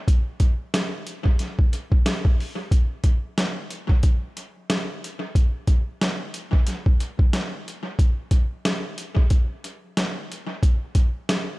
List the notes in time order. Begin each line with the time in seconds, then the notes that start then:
0.08 kick, closed hi-hat
0.40 kick, closed hi-hat
0.74 snare, closed hi-hat
1.07 closed hi-hat
1.25 kick
1.39 snare, closed hi-hat
1.59 kick
1.73 closed hi-hat
1.92 kick
2.06 snare, closed hi-hat
2.25 kick
2.40 open hi-hat
2.71 kick, closed hi-hat
3.04 kick, closed hi-hat
3.38 snare, closed hi-hat
3.70 closed hi-hat
3.89 kick
4.03 kick, closed hi-hat
4.37 closed hi-hat
4.70 snare, closed hi-hat
5.04 closed hi-hat
5.35 kick, closed hi-hat
5.67 kick, closed hi-hat
6.02 snare, closed hi-hat
6.34 closed hi-hat
6.53 kick
6.67 snare, closed hi-hat
6.86 kick
7.00 closed hi-hat
7.19 kick
7.33 snare, closed hi-hat
7.68 closed hi-hat
7.99 kick, closed hi-hat
8.31 kick, closed hi-hat
8.65 snare, closed hi-hat
8.98 closed hi-hat
9.17 kick
9.30 kick, closed hi-hat
9.64 closed hi-hat
9.97 snare, closed hi-hat
10.32 closed hi-hat
10.63 kick, closed hi-hat
10.95 kick, closed hi-hat
11.29 snare, closed hi-hat